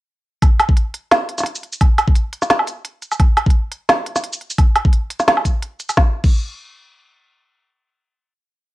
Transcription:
0.42 kick, closed hi-hat, low woodblock
0.60 closed hi-hat, low woodblock
0.69 kick
0.77 closed hi-hat
0.94 closed hi-hat
1.11 snare, closed hi-hat
1.29 closed hi-hat
1.38 snare, shaker
1.40 snare
1.43 snare, closed hi-hat
1.55 shaker
1.63 closed hi-hat
1.73 shaker
1.81 kick, closed hi-hat, low woodblock
1.98 closed hi-hat, low woodblock
2.08 kick
2.15 closed hi-hat
2.33 closed hi-hat
2.42 snare, shaker
2.50 snare, closed hi-hat
2.59 low woodblock
2.68 closed hi-hat, shaker
2.85 closed hi-hat
3.02 closed hi-hat, shaker
3.12 low woodblock, shaker
3.20 kick, closed hi-hat, low woodblock
3.37 closed hi-hat, low woodblock
3.46 kick, closed hi-hat
3.72 closed hi-hat
3.89 snare, closed hi-hat
4.06 closed hi-hat
4.16 snare, shaker
4.24 closed hi-hat
4.33 shaker
4.41 closed hi-hat
4.50 shaker
4.58 kick, closed hi-hat, low woodblock
4.76 closed hi-hat, low woodblock
4.85 kick
4.93 closed hi-hat
5.10 closed hi-hat
5.20 snare, shaker
5.28 snare, closed hi-hat
5.37 low woodblock
5.45 kick, closed hi-hat, shaker
5.62 closed hi-hat
5.80 closed hi-hat, shaker
5.89 low woodblock, shaker
5.97 kick, snare
6.24 kick, crash

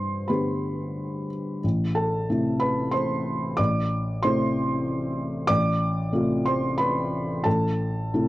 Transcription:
Already playing: G2 C5 C6
0.28 D3 B3 G4 B4 B5
1.64 A1
1.95 A4 A5
2.30 C3 A3 E4
2.60 B4 B5
2.91 C5 C6
3.57 A1 D5 D6
4.23 C3 A3 E4 C5 C6
5.47 A1 D5 D6
6.12 C3 A3 F4
6.46 C5 C6
6.78 B4 B5
7.44 A1 A4 A5
8.14 C3 A3 E4

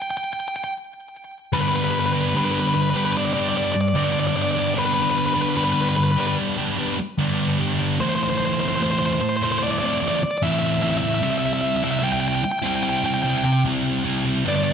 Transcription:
0.02 G5
0.11 G5
0.17 G5
0.24 G5
0.33 G5
0.40 G5
0.48 G5
0.56 G5
0.64 G5
1.52 G2 D3 G3 B3 D4 G4 B4
1.61 B4
1.68 B4
1.76 B4
1.84 B4
1.91 B4
1.99 B4
2.06 B4
2.13 G3 B3 D4 G4 B4
2.21 B4
2.29 B4
2.34 G2 D3 G3 B3 D4 G4 B4
2.45 B4
2.51 B4
2.59 B4
2.68 B4
2.74 B4, muted distorted electric guitar stroke
2.82 B4
2.90 G4 B4
2.94 G3 B3 D4 B4
3.05 B4
3.13 B4
3.17 D5
3.25 D5
3.33 G3 B3 D4 G4 D5
3.40 D5
3.49 D5
3.54 G3 B3 D4 G4 D5
3.65 D5
3.72 D5, muted distorted electric guitar stroke
3.81 D5
3.88 D5
3.94 G2 D3 G3 B3 D4 G4 D5
4.04 D5
4.11 D5
4.19 D5
4.27 D5
4.35 G3 B3 D4 G4 D5
4.42 D5
4.51 D5
4.55 G3 B3 D4 G4 D5
4.67 D5
4.74 G2 D3 G3 B3 D4 G4 D5
4.79 B4
4.85 B4
4.94 B4
5.02 B4
5.11 B4
5.18 B4
5.26 B4
5.34 G3 B3 D4 G4 B4
5.42 B4
5.49 B4
5.56 G2 D3 G3 B3 D4 G4 B4
5.64 B4
5.73 B4
5.81 B4
5.89 B4
5.96 B4, muted distorted electric guitar stroke
6.04 B4
6.12 B4
6.17 G3 B3 D4 G4 B4
6.27 B4
6.58 G3 B3 D4 G4
6.77 G3 B3 D4 G4
6.98 muted distorted electric guitar stroke
7.18 G2 D3 G3 B3 D4 G4
7.59 G3 B3 D4 G4
7.79 G3 B3 D4 G4
7.99 A2 E3 A3 C4 E4 C5
8.09 C5
8.15 C5
8.23 C5
8.30 C5
8.38 C5
8.46 C5
8.53 C5
8.60 A3 C4 E4 C5
8.68 C5
8.75 C5
8.79 A2 E3 A3 C4 E4 C5
8.91 C5
8.99 C5
9.06 C5
9.13 C5
9.20 C5, muted distorted electric guitar stroke
9.29 C5
9.37 C5
9.41 A3 C4 E4 C5
9.52 C5
9.59 C5
9.63 D5
9.71 D5
9.78 C4 E4 D5
9.83 A3 D5
9.94 D5
10.00 E3 A3 C4 E4 D5
10.08 D5
10.16 D5
10.21 D5, muted distorted electric guitar stroke
10.31 D5
10.38 D5
10.42 A2 E3 A3 C4 E4 E5
10.51 E5
10.59 E5
10.67 E5
10.75 E5
10.82 E3 A3 C4 E4 E5
10.91 E5
10.98 E4 E5
11.03 A3 C4 E5
11.14 E5
11.22 C3 G3 C4 E4 E5
11.30 E5
11.38 E5
11.46 E5
11.53 E5
11.61 E5
11.68 E5
11.77 E5
11.82 G3 C4 E4 E5
11.91 E5
11.99 C3 G3 E5
12.03 C4 E4 G5
12.12 G5
12.20 G5
12.28 G5
12.35 G5
12.43 G5, muted distorted electric guitar stroke
12.52 G5
12.59 C4 E4 G5
12.64 G3 G5
12.76 G5
12.83 G5
12.89 G5
12.98 G5
13.04 G3 C4 E4 G5
13.14 G5
13.22 C3 G3 C4 E4 G5
13.30 G5
13.38 G5
13.44 G5, muted distorted electric guitar stroke
13.53 G5
13.64 C3 G3 C4 E4
14.04 C3 G3 C4 E4
14.25 G3 C4 E4
14.44 G2 D3 G3 B3 D4
14.48 D5
14.56 D5
14.64 D5

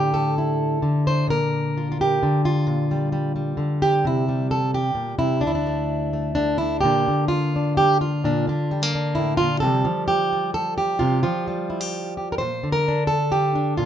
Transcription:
Already playing: A2 D3 G4 A4
0.14 A4
0.38 E4
0.82 D3
1.07 C5
1.28 A#2 A#4
1.77 F4
1.92 F4
2.01 G4
2.23 D3
2.45 F4
2.67 A#2
2.91 G3
3.12 G3
3.36 G3
3.57 D3
3.82 G4
4.05 C3 E4
4.29 G3
4.51 A4
4.74 G4
4.95 A#2
5.18 C3 E4
5.41 D2 D4
5.47 E4
5.55 D4
5.67 A3
6.13 A3
6.35 D3 D4
6.58 D4 E4
6.81 A#2 D3 G4
6.85 A#3 D4
7.08 D3
7.28 F4
7.56 D4
7.77 G4
8.01 F4
8.24 A#2 D4
8.47 D3 D4
8.71 G3
8.83 A#3
8.95 D4
9.15 A2 E4
9.37 A#2 F4
9.60 C3 F3 G3 A4
9.85 F3
10.08 G4
10.33 G3
10.54 A4
10.78 G4
10.99 C3 F4
11.23 F3 F4
11.47 G3
11.70 E4
11.81 G4
12.17 G4
12.32 A#4
12.38 A#2 C5
12.63 D3
12.72 A#4
12.88 D4
13.07 A4
13.32 G4
13.55 D4
13.77 A#2 F4

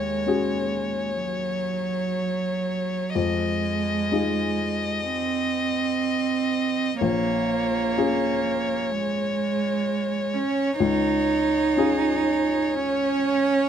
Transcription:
Already playing: D#2 G#3 C#5
0.26 C#4 F#4 G#4
1.23 F#3
3.15 F2 G#3 D#5
4.12 D#4 F4 G#4
5.10 C4
7.01 A#1 A#3 C#5
7.97 C#4 F4 G#4
8.92 G#3
10.33 C#4
10.79 C#2 D#4 C#5
11.77 C#4 F4 G#4
12.74 C#4

